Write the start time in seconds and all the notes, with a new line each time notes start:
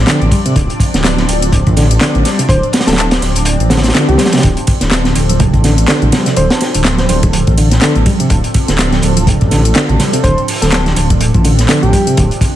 Already playing: F3 C4 D4 D5
0.07 D3, snare, clap, closed hi-hat
0.21 A1, closed hi-hat
0.31 G3, kick, closed hi-hat, ride
0.46 C3, closed hi-hat
0.56 D1 D3, kick, closed hi-hat
0.70 closed hi-hat
0.80 kick, closed hi-hat, ride
0.94 D1 D3, snare, closed hi-hat
1.04 snare, clap, closed hi-hat
1.18 snare, closed hi-hat
1.29 D1, closed hi-hat, ride
1.42 closed hi-hat
1.52 kick, closed hi-hat
1.67 A1, kick, closed hi-hat
1.77 D3, snare, closed hi-hat, ride
1.91 closed hi-hat
2.01 D3, snare, clap, closed hi-hat
2.15 A1, closed hi-hat
2.25 G3, snare, closed hi-hat, ride
2.39 C3, closed hi-hat
2.49 D1 D3 C5, kick, closed hi-hat
2.63 closed hi-hat
2.73 snare, closed hi-hat, ride
2.80 snare, closed hi-hat
2.87 D1 D3 A4, snare, closed hi-hat
2.92 snare, closed hi-hat
2.98 A4, clap, closed hi-hat
3.11 snare, closed hi-hat
3.22 D1, snare, ride
3.35 closed hi-hat
3.45 closed hi-hat
3.60 A1, closed hi-hat
3.70 D3, snare, closed hi-hat, ride
3.77 snare, closed hi-hat
3.83 snare, closed hi-hat
3.89 snare, closed hi-hat
3.95 D3, snare, clap, closed hi-hat
4.08 C2 G4, closed hi-hat
4.18 G3, snare, closed hi-hat, ride
4.25 snare, closed hi-hat
4.32 C3, snare, closed hi-hat
4.37 snare, closed hi-hat
4.43 D1 D3 A4, kick, closed hi-hat
4.57 closed hi-hat
4.67 kick, closed hi-hat, ride
4.81 D1 D3, snare, closed hi-hat
4.91 snare, clap, closed hi-hat
5.05 snare, closed hi-hat
5.15 D1, closed hi-hat, ride, high conga
5.29 closed hi-hat, high conga
5.40 kick, closed hi-hat, low conga
5.54 A1, kick, closed hi-hat
5.64 D3, snare, closed hi-hat, ride
5.78 closed hi-hat
5.88 D3, snare, clap, closed hi-hat
6.02 A1, closed hi-hat, low conga
6.12 G3, snare, closed hi-hat, ride, high conga
6.26 C3, snare, closed hi-hat
6.36 D1 D3 C5, closed hi-hat
6.50 snare, closed hi-hat
6.61 snare, ride
6.74 D1 D3, closed hi-hat
6.85 snare, clap, closed hi-hat
6.98 C5, snare, closed hi-hat
7.09 D1 C5, closed hi-hat, ride, high conga
7.23 kick, closed hi-hat, high conga
7.33 closed hi-hat
7.47 A1, kick, closed hi-hat
7.58 D3, closed hi-hat, ride
7.71 snare, closed hi-hat
7.81 D3, snare, clap, closed hi-hat
7.95 A1, closed hi-hat
8.06 G3, kick, closed hi-hat, ride, high conga
8.20 C3, closed hi-hat
8.30 D1 D3, kick, closed hi-hat
8.44 closed hi-hat
8.54 kick, closed hi-hat, ride
8.68 D1 D3, snare, closed hi-hat
8.79 snare, clap, closed hi-hat
8.92 snare, closed hi-hat
9.02 D1, closed hi-hat, ride, high conga
9.17 closed hi-hat, high conga
9.27 kick, closed hi-hat, low conga
9.41 A1, kick, closed hi-hat
9.51 D3, snare, closed hi-hat, ride
9.65 closed hi-hat
9.75 D3, snare, clap, closed hi-hat
9.89 A1, closed hi-hat, low conga
9.99 G3, snare, closed hi-hat, ride, high conga
10.13 C3, closed hi-hat
10.23 D1 D3 C5, kick, closed hi-hat
10.38 closed hi-hat
10.48 open hi-hat, ride
10.62 D1 D3 A4, snare, closed hi-hat
10.72 A4, snare, clap, closed hi-hat
10.86 snare, closed hi-hat
10.96 D1, closed hi-hat, ride, high conga
11.10 kick, closed hi-hat, high conga
11.20 closed hi-hat
11.34 A1, kick, closed hi-hat
11.44 D3, closed hi-hat, ride
11.59 snare, closed hi-hat
11.69 D3, snare, clap, closed hi-hat
11.83 A1 G4, closed hi-hat
11.93 G3, kick, closed hi-hat, ride, high conga
12.07 C3, closed hi-hat
12.17 D1 D3 C5, kick, closed hi-hat
12.31 closed hi-hat
12.41 kick, closed hi-hat, ride